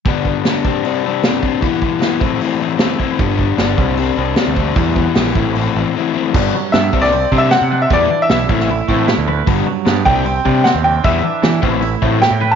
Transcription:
<<
  \new Staff \with { instrumentName = "Upright piano" } { \time 4/4 \key g \major \tempo 4 = 153 r1 | r1 | r1 | r1 |
r4 e''8. d''16~ \tuplet 3/2 { d''4 e''8 } fis''8. e''16 | d''8. e''16 e''2 r4 | r4. g''4. fis''8 g''8 | e''2. g''8. a''16 | }
  \new Staff \with { instrumentName = "Clean electric guitar" } { \time 4/4 \key g \major r1 | r1 | r1 | r1 |
g,8 fis8 b8 c8 c'8 c8 c'8 d'8 | e8 d'8 e'8 a,8 e'8 a8 e'8 b'8 | g,8 fis8 b8 c8 c'8 c8 c'8 d'8 | e8 d'8 e'8 a,8 e'8 a8 e'8 b'8 | }
  \new Staff \with { instrumentName = "Overdriven electric guitar" } { \time 4/4 \key g \major <g, d g b d'>8 <g b d'>8 <d g b d'>8 <c g c' d'>8 <c g c' d'>8 <g c' d'>8 <c g c' d'>8 <g c' d'>8 | <e g b e'>8 <g b e'>8 <e g b e'>8 <a, e a c' e'>8 <a, e a c' e'>8 <a c' e'>8 <e a c' e'>8 <a c' e'>8 | <g, d g b d'>8 <g b d'>8 <d g b d'>8 <c g c' d'>8 <c g c' d'>8 <g c' d'>8 <c g c' d'>8 <g c' d'>8 | <e g b e'>8 <g b e'>8 <e g b e'>8 <a, e a c' e'>8 <a, e a c' e'>8 <a c' e'>8 <e a c' e'>8 <a c' e'>8 |
<d g b d'>8 r4 <c g c' d'>8 r8 <c g c' d'>8 r4 | <e g b e'>8 r4 <e a c' e'>8 r8 <e a c' e'>8 r4 | <d g b d'>8 r4 <c g c' d'>8 r8 <c g c' d'>8 r4 | <e g b e'>8 r4 <e a c' e'>8 r8 <e a c' e'>8 r4 | }
  \new Staff \with { instrumentName = "Picked electric bass" } { \clef bass \time 4/4 \key g \major r1 | r1 | g,,4 g,,8 c,4 c,8 r16 d,8. | e,4 bes,,8 a,,4 a,,16 r4 r16 |
g,,8 r8 g,8 c,4 c8. c8. | e,8 r8 b,,8 a,,4 a,8. d,8. | g,,8 r8 g,8 c,4 c8. ees,8. | e,8 r8 e8 a,,4 a,8. a,8. | }
  \new DrumStaff \with { instrumentName = "Drums" } \drummode { \time 4/4 <hho bd>8 bd8 <hho sn>8 bd8 hho4 <hho sn>8 bd8 | <hho bd>8 bd8 <hho sn>8 bd8 hho4 <hho sn>8 bd8 | <hho bd>8 bd8 <hho sn>8 bd8 hho4 <hho sn>8 bd8 | <hho bd>8 bd8 <hho sn>16 sn16 bd8 hho4 r4 |
<cymc bd>4 <hho sn>8 bd16 sn16 hho8 bd8 <hho sn>4 | <hho bd>4 <hho sn>8 bd16 sn16 hho8 bd8 <hho sn>4 | <hho bd>4 <hho sn>8 bd8 hho8 bd8 <hho sn>4 | <hho bd>4 <hho sn>8 bd8 hho8 bd8 <hho sn>4 | }
>>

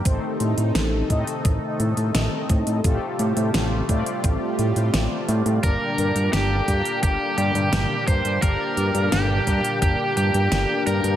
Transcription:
<<
  \new Staff \with { instrumentName = "Lead electric guitar" } { \time 4/4 \key g \minor \tempo 4 = 86 r1 | r1 | bes'4 g'4 g'8 g'4 c''8 | bes'4 g'4 g'8 g'4 bes'8 | }
  \new Staff \with { instrumentName = "Analog polysynth" } { \time 4/4 \key g \minor <a c' ees' a' c''>4. <a c' ees' a' ees''>2~ <a c' ees' a' ees''>8 | <a c' f' g' a'>4. <a c' f' g' d''>2~ <a c' f' g' d''>8 | <bes d' g' bes' d''>4. <bes d' g' bes' g''>2~ <bes d' g' bes' g''>8 | <bes d' g' bes' d''>4. <bes d' g' bes' g''>2~ <bes d' g' bes' g''>8 | }
  \new Staff \with { instrumentName = "Analog synth pad" } { \time 4/4 \key g \minor <c ees a ees' a'>1 | <c g a f' g'>1 | <bes, d g d' g'>1~ | <bes, d g d' g'>1 | }
  \new Staff \with { instrumentName = "Analog synth bass" } { \clef bass \time 4/4 \key g \minor a,,16 r16 a,16 a,16 a,,8 a,16 r16 a,,16 r16 a,16 a,16 a,,16 r16 a,16 a,16 | a,,16 r16 a,16 a,16 a,,8 a,16 r16 a,,16 r16 a,16 a,16 a,,16 r16 a,16 a,16 | g,,16 r16 g,16 g,16 g,,8 g,16 r16 g,,16 r16 g,16 g,16 g,,16 r16 g,16 g,16 | g,,16 r16 g,16 g,16 g,,8 g,16 r16 g,,16 r16 g,16 g,16 g,,16 r16 g,16 g,16 | }
  \new DrumStaff \with { instrumentName = "Drums" } \drummode { \time 4/4 <hh bd>8 hh16 hh16 <hh sn>8 <hh bd>16 hh16 <hh bd>8 hh16 hh16 <hh sn>8 <hh bd>16 hh16 | <hh bd>8 hh16 hh16 <hh sn>8 <hh bd>16 hh16 <hh bd>8 hh16 hh16 <hh sn>8 hh16 hh16 | <hh bd>8 hh16 hh16 <hh sn>8 <hh bd>16 hh16 <hh bd>8 hh16 hh16 <hh sn>8 <hh bd>16 hh16 | <hh bd>8 hh16 hh16 <hh sn>8 <hh bd>16 hh16 <hh bd>8 hh16 hh16 <hh sn>8 hh16 hh16 | }
>>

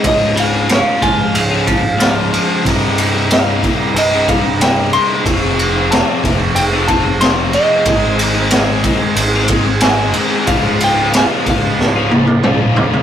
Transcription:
<<
  \new Staff \with { instrumentName = "Clean electric guitar" } { \time 4/4 \key des \lydian \tempo 4 = 92 ees''8 f''8 des''8 aes''4 r4. | r4 f''4 ees''8 f''8 g''8 c'''8~ | c'''8 r8 a''4 g''8 a''8 c'''8 ees''8~ | ees''8 r2 r8 aes''4 |
f''8 g''8 aes''8 f''4 r4. | }
  \new Staff \with { instrumentName = "Overdriven electric guitar" } { \clef bass \time 4/4 \key des \lydian r1 | <c, g, c g ees'>8 <g, c g ees'>8 <c, g, c g ees'>16 <c g ees'>8 <c g ees'>8 <c g ees'>16 <g, c g ees'>16 <c g ees'>16 <c, g, c g ees'>8 <g, c g ees'>16 <c g ees'>16 | <f, c f a c' f'>8 <f a c' f'>8 <f, c f a c' f'>16 <f a c' f'>8 <f a c' f'>8 <f a c' f'>16 <f a c' f'>16 <f a c' f'>16 <f, c f a c' f'>8 <f a c' f'>16 <f a c' f'>16 | <aes, ees aes c' ees' aes'>8 <aes c' ees' aes'>8 <aes, ees aes c' ees' aes'>16 <aes c' ees' aes'>8 <aes c' ees' aes'>8 <aes c' ees' aes'>16 <aes c' ees' aes'>16 <aes c' ees' aes'>16 <aes, ees aes c' ees' aes'>8 <aes c' ees' aes'>16 <aes c' ees' aes'>16 |
<des, aes, des f f'>8 <aes, des f f'>8 <des, aes, des f f'>16 <des f f'>8 <des f f'>8 <des f f'>16 <aes, des f f'>16 <des f f'>16 <des, aes, des f f'>8 <aes, des f f'>16 <des f f'>16 | }
  \new Staff \with { instrumentName = "Distorted electric guitar" } { \clef bass \time 4/4 \key des \lydian <des, aes, des f f'>8. <des f f'>16 <des, aes, des f f'>8 <aes, des f f'>8. <des f f'>16 <aes, des f f'>8 <des, aes, des f f'>8 <aes, des f f'>8 | <c, g, c g ees'>8. <c g ees'>16 <c, g, c g ees'>8 <g, c g ees'>8. <c g ees'>16 <g, c g ees'>8 <c, g, c g ees'>8 <g, c g ees'>8 | <f, c f a c' f'>8. <f a c' f'>16 <f, c f a c' f'>8 <f a c' f'>8. <f a c' f'>16 <f a c' f'>8 <f, c f a c' f'>8 <f a c' f'>8 | <aes, ees aes c' ees' aes'>8. <aes c' ees' aes'>16 <aes, ees aes c' ees' aes'>8 <aes c' ees' aes'>8. <aes c' ees' aes'>16 <aes c' ees' aes'>8 <aes, ees aes c' ees' aes'>8 <aes c' ees' aes'>8 |
<des, aes, des f f'>8. <des f f'>16 <des, aes, des f f'>8 <aes, des f f'>8. <des f f'>16 <aes, des f f'>8 <des, aes, des f f'>8 <aes, des f f'>8 | }
  \new Staff \with { instrumentName = "Clean electric guitar" } { \clef bass \time 4/4 \key des \lydian des,8 des8 f8 f'8 des8 f8 f'8 f8 | r1 | r1 | r1 |
r1 | }
  \new Staff \with { instrumentName = "Picked electric bass" } { \clef bass \time 4/4 \key des \lydian des,,4. des,,8 des,,2 | c,,2 c,,2 | f,,4. f,,8 f,,2 | aes,,2 aes,,2 |
des,,4. des,,8 des,,2 | }
  \new DrumStaff \with { instrumentName = "Drums" } \drummode { \time 4/4 <bd cymr>8 cymr8 <cymr sn>8 <bd cymr>8 cymr8 <bd cymr>8 <cymr sn>8 cymr8 | <bd cymr>8 cymr8 <cymr sn>8 <bd cymr>8 cymr8 <bd cymr>8 <cymr sn>8 cymr8 | <bd cymr>8 cymr8 <cymr sn>8 <bd cymr>8 cymr8 <bd cymr>8 <cymr sn>8 cymr8 | <bd cymr>8 cymr8 <cymr sn>8 <bd cymr>8 cymr8 <bd cymr>8 <cymr sn>8 cymr8 |
<bd cymr>8 cymr8 <cymr sn>8 <bd cymr>8 sn8 tommh16 tommh16 toml8 tomfh16 tomfh16 | }
>>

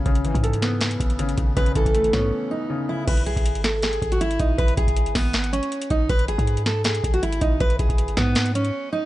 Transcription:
<<
  \new Staff \with { instrumentName = "Steel-string acoustic guitar" } { \time 4/4 \key gis \phrygian \tempo 4 = 159 r1 | b'8 a'4 cis'4 dis'4 e'8 | b'8 gis'4 a'8 gis'8. fis'16 e'8 dis'8 | b'8 gis'4 b4 cis'4 dis'8 |
b'8 gis'4 a'8 gis'8. fis'16 e'8 dis'8 | b'8 gis'4 b4 cis'4 dis'8 | }
  \new Staff \with { instrumentName = "Grand piano" } { \clef bass \time 4/4 \key gis \phrygian cis8 e8 a'8 b4. cis8 cis8 | cis8 e8 a8 b4. cis8 cis8 | r1 | r1 |
r1 | r1 | }
  \new Staff \with { instrumentName = "808-style bass" } { \clef bass \time 4/4 \key gis \phrygian gis,,8. gis,4.~ gis,16 gis,,4 gis,,8 | gis,,8 gis,,16 gis,,8. gis,8 r2 | gis,,8 b,,16 gis,,4.~ gis,,16 gis,,4 gis,,8 | gis,,8 gis,,4 gis,,4~ gis,,16 r8. gis,,8 |
gis,,8. gis,4.~ gis,16 gis,,4 gis,,8 | gis,,8 gis,,16 gis,,8. gis,4. r4 | }
  \new DrumStaff \with { instrumentName = "Drums" } \drummode { \time 4/4 <hh bd>16 hh16 hh16 <hh bd>16 hh16 hh16 <hh sn>8 <hh sn>16 hh16 <hh bd>16 hh16 hh16 hh16 <hh bd>8 | <hh bd>16 hh16 <hh bd>16 <hh bd>16 hh16 hh16 <hh bd sn>8 r4 r4 | <cymc hh bd>16 hh16 hh16 <hh bd>16 hh16 hh16 <hh sn>8 <hh sn>16 hh16 <hh bd>16 hh16 hh16 hh16 <hh bd>8 | <hh bd>16 hh16 <hh bd>16 <hh bd>16 hh16 hh16 <hho bd sn>8 <hh sn>16 hh16 hh16 hh16 hh16 hh16 <hh bd>8 |
<hh bd>16 hh16 hh16 <hh bd>16 hh16 hh16 <hh sn>8 <hh sn>16 hh16 <hh bd>16 hh16 hh16 hh16 <hh bd>8 | <hh bd>16 hh16 <hh bd>16 <hh bd>16 hh16 hh16 <hh bd sn>8 <hh sn>16 hh16 hh16 hh16 r4 | }
>>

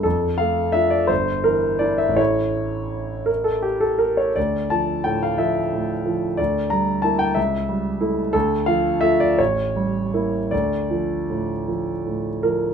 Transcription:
<<
  \new Staff \with { instrumentName = "Grand piano" } { \time 6/8 \key d \minor \tempo 4. = 56 a'8 f''8 e''16 d''16 c''8 bes'8 d''16 e''16 | cis''4. bes'16 a'16 g'16 a'16 bes'16 cis''16 | d''8 a''8 g''16 f''16 e''4. | d''8 bes''8 a''16 g''16 e''4. |
a'8 f''8 e''16 d''16 cis''4. | d''4. r4 bes'8 | }
  \new Staff \with { instrumentName = "Grand piano" } { \clef bass \time 6/8 \key d \minor f,8 a8 <d' f'>8 g,,8 e8 <d' e'>8 | <a,, e a e'>2. | d,8 f8 a,8 f8 a,8 f8 | d,8 g8 <bes e'>8 cis,8 g8 <a e'>8 |
d,8 f8 <a f'>8 a,,8 g8 <bes e'>8 | d,8 f8 a,8 f8 a,8 f8 | }
>>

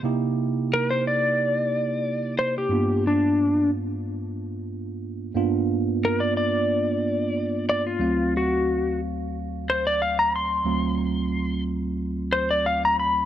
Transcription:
<<
  \new Staff \with { instrumentName = "Electric slide guitar" } { \time 4/4 \key d \dorian \tempo 4 = 90 r4 bes'16 c''16 d''2 c''16 g'16~ | g'8 d'4 r2 r8 | r4 ais'16 d''16 d''2 d''16 f'16~ | f'8 fis'4 r4 c''16 d''16 eis''16 bes''16 c'''8~ |
c'''4. r4 c''16 d''16 eis''16 bes''16 b''8 | }
  \new Staff \with { instrumentName = "Tine electric piano" } { \time 4/4 \key d \dorian <c bes dis' e' g'>1 | <g, ais b d' f'>1 | <g, ais b d' f'>1 | <d, fis a c' eis''>1 |
<d, fis a c' eis'>1 | }
>>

